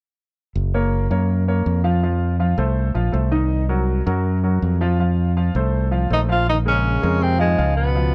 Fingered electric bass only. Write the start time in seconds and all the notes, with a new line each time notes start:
0.56 F#1
1.11 F#2
1.66 F2
2.58 C2
2.95 A#1
3.13 C2
4.07 F#2
4.62 F2
5.55 C2
6.10 A#1
7.03 F2
7.59 C#2